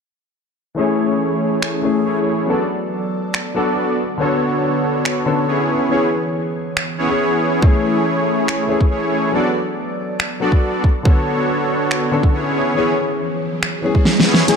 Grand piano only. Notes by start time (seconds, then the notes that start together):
0.75 E3 A3 C#4 G#4
1.82 E3 A3 C#4 G#4
2.46 F#3 B3 D4 A4
3.54 F#3 B3 D4 A4
4.17 D3 B3 C#5
4.22 A4
5.26 D3 B3 C#4 A4
5.89 E3 B3 C#4
5.93 G#4
7.07 E3 B3 C#4 G#4
7.60 E3 A3 C#4 G#4
8.67 E3 A3 C#4
8.72 G#4
9.32 F#3 B3 D4
9.36 A4
10.40 F#3 B3 D4 A4
11.03 D3 B3 C#5
11.07 A4
12.11 D3 B3 C#4 A4
12.75 E3 B3 C#4 G#4
13.82 E3 B3 C#4 G#4
14.46 E3 A3 C#4 G#5